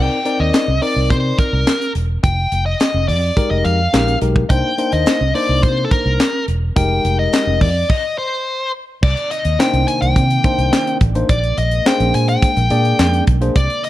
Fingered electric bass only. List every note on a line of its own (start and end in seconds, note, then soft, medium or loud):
0.40 0.50 D#2 medium
0.68 0.79 C2 medium
0.96 1.12 C2 medium
1.10 1.32 C3 loud
1.53 1.64 C2 loud
1.95 2.17 E1 medium
2.24 2.45 F1 loud
2.52 2.73 F1 loud
2.94 3.10 F1 medium
3.09 3.30 F2 medium
3.51 3.62 F1 loud
3.65 3.87 F2 medium
3.94 4.15 A#1 medium
4.22 4.43 B1 medium
4.50 4.61 C2 loud
4.93 5.03 D#2 medium
5.21 5.32 C2 medium
5.49 5.65 C2 medium
5.63 5.85 C3 loud
6.06 6.16 C2 loud
6.48 6.69 E1 medium
6.77 6.98 F1 medium
7.05 7.26 F1 medium
7.47 7.63 F1 medium
7.61 7.83 F2 medium
9.03 9.14 C2 loud
9.45 9.56 D#2 medium
9.74 9.84 C2 medium
10.02 10.13 C2 medium
10.16 10.37 C3 loud
10.58 10.69 C2 medium
11.01 11.22 A1 medium
11.29 11.51 A#1 loud
11.58 11.79 A#1 medium
12.00 12.11 A#1 loud
12.15 12.36 A#2 medium
12.57 12.67 A#1 loud
12.71 12.92 A#2 loud
12.99 13.20 F2 loud
13.28 13.49 B1 loud
13.56 13.66 C2 loud